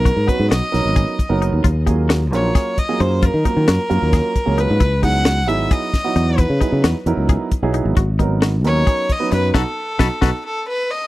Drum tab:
HH |xxxxxxx|xxxxxxx|xxxxxxx|xxxxxxx|
SD |--oo---|--o-o--|--o-o--|--o--o-|
BD |oo--oo-|oo--oo-|oo--oo-|oo--oo-|

HH |xxxxxxx|xxxxxxx|-------|
SD |--o----|--o---o|o-oo---|
BD |oo--oo-|oo--oo-|o-oo---|